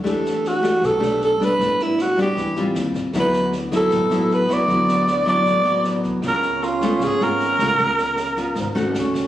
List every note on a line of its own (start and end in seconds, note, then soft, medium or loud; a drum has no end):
0.03 0.78 E2 medium
0.03 0.80 E3 medium
0.03 0.59 A3 medium
0.03 0.59 D4 medium
0.03 0.60 G4 medium
0.03 kick medium
0.03 cross-stick medium
0.03 snare soft
0.08 0.49 A4 medium
0.25 snare soft
0.45 0.87 F#4 medium
0.45 snare soft
0.63 0.98 A3 medium
0.63 0.98 D4 medium
0.63 0.98 G4 medium
0.63 kick soft
0.63 cross-stick medium
0.63 snare soft
0.81 1.00 B1 medium
0.81 1.57 B2 medium
0.81 kick medium
0.81 snare soft
0.85 1.22 A4 loud
1.00 1.37 B1 medium
1.00 1.36 A3 medium
1.00 1.36 D4 medium
1.00 1.36 G4 medium
1.00 snare soft
1.21 1.46 A4 medium
1.21 snare soft
1.40 1.49 E2 medium
1.40 2.14 G3 soft
1.40 2.14 B3 medium
1.40 2.15 D4 medium
1.40 kick soft
1.40 cross-stick medium
1.40 snare soft
1.45 1.84 B4 loud
1.59 2.33 A1 medium
1.59 2.35 A2 medium
1.59 kick medium
1.59 snare soft
1.79 2.03 E4 medium
1.79 snare soft
1.98 2.19 F#4 medium
1.98 cross-stick medium
1.98 snare soft
2.17 2.53 G3 soft
2.17 2.53 B3 medium
2.17 2.54 D4 medium
2.17 kick soft
2.17 snare soft
2.22 2.67 G4 medium
2.36 2.55 E2 medium
2.36 2.74 E3 medium
2.36 kick medium
2.36 snare soft
2.56 2.74 A1 medium
2.56 3.12 G3 medium
2.56 3.12 C4 medium
2.56 3.12 F4 medium
2.56 snare soft
2.75 2.94 D#2 loud
2.75 cross-stick medium
2.75 snare soft
2.94 3.03 A1 medium
2.94 kick soft
2.94 snare soft
3.13 3.87 D2 medium
3.13 3.90 D3 medium
3.13 3.53 F#3 medium
3.13 6.20 B3 medium
3.13 3.53 B3 medium
3.13 3.53 E4 medium
3.13 kick medium
3.13 cross-stick medium
3.13 snare soft
3.19 3.53 B4 medium
3.33 snare soft
3.52 snare soft
3.71 4.08 F#3 medium
3.71 4.08 B3 medium
3.71 4.08 E4 medium
3.71 kick soft
3.71 cross-stick medium
3.71 snare soft
3.76 4.36 A4 loud
3.90 4.09 A1 medium
3.90 4.67 A2 medium
3.90 kick medium
3.90 snare soft
4.10 4.47 A1 medium
4.10 4.46 F#3 medium
4.10 4.47 B3 medium
4.10 4.47 E4 medium
4.10 snare soft
4.31 4.55 B4 medium
4.31 snare soft
4.49 4.58 D2 medium
4.49 4.66 F#3 medium
4.49 4.66 B3 medium
4.49 4.66 E4 medium
4.49 kick soft
4.49 cross-stick medium
4.49 snare soft
4.53 5.29 D5 loud
4.67 5.42 D2 medium
4.67 5.43 D3 medium
4.67 5.07 F#3 medium
4.67 5.07 B3 medium
4.67 5.07 E4 medium
4.67 kick medium
4.67 snare soft
4.88 snare soft
5.07 cross-stick medium
5.07 snare soft
5.25 5.62 F#3 medium
5.25 5.62 B3 medium
5.25 5.62 E4 medium
5.25 kick soft
5.25 snare soft
5.29 6.02 D5 loud
5.45 5.64 A1 medium
5.45 6.22 A2 medium
5.45 kick medium
5.45 snare soft
5.64 6.02 A1 medium
5.64 6.20 F#3 medium
5.64 6.20 B3 medium
5.64 6.20 E4 medium
5.64 snare soft
5.84 cross-stick medium
5.84 snare soft
6.03 6.13 D2 medium
6.03 kick soft
6.03 snare soft
6.22 6.97 C#2 medium
6.22 6.99 C#3 medium
6.22 6.79 B3 medium
6.22 8.63 C#4 loud
6.22 6.79 F4 medium
6.22 kick medium
6.22 cross-stick medium
6.22 snare soft
6.28 6.65 A#4 medium
6.42 snare soft
6.62 7.05 F4 medium
6.62 snare soft
6.81 7.18 A3 medium
6.81 7.18 B3 medium
6.81 7.18 F4 medium
6.81 kick soft
6.81 cross-stick medium
6.81 snare soft
7.00 7.19 G#1 medium
7.00 7.25 G#4 medium
7.00 kick medium
7.00 snare soft
7.19 7.56 G#1 medium
7.19 7.56 B3 medium
7.19 7.57 F4 medium
7.19 8.96 A#4 loud
7.19 snare soft
7.40 snare soft
7.58 7.68 C#2 medium
7.58 7.77 A3 medium
7.58 7.77 B3 medium
7.58 7.77 F4 medium
7.58 kick soft
7.58 cross-stick medium
7.58 snare soft
7.78 8.52 C#2 medium
7.78 8.54 C#3 medium
7.78 8.17 B3 medium
7.78 8.18 F4 medium
7.78 kick medium
7.78 snare soft
7.98 snare soft
8.16 cross-stick medium
8.16 snare soft
8.36 8.72 B3 medium
8.36 8.73 F4 medium
8.36 kick soft
8.36 snare soft
8.55 8.74 G#1 medium
8.55 8.92 G#2 soft
8.55 kick medium
8.55 snare soft
8.75 8.93 G#1 medium
8.75 9.27 A3 medium
8.75 9.27 C#4 medium
8.75 9.27 F#4 medium
8.75 snare soft
8.93 9.13 D2 medium
8.93 9.27 C#4 medium
8.93 cross-stick soft
8.93 snare soft
9.14 9.23 D2 medium
9.14 kick soft
9.14 snare soft